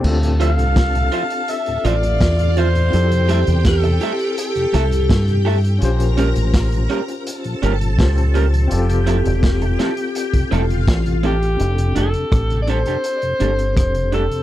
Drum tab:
CC |x---------------|----------------|----------------|----------------|
HH |-xxxxxxxxxxxxxxx|xxxxxxxxxxxxxxox|xxxxxxxxxxxxxxxx|xxxxxxxxxxxxxxxx|
SD |----o-------o---|----o-------o---|----o-------o---|----o-o-----o---|
BD |----o-------o---|----o-------o---|----o-------o---|----o----o--o---|

CC |----------------|
HH |xxxxxxxxxxxxxxxx|
SD |----r-r-----r---|
BD |----o-------o---|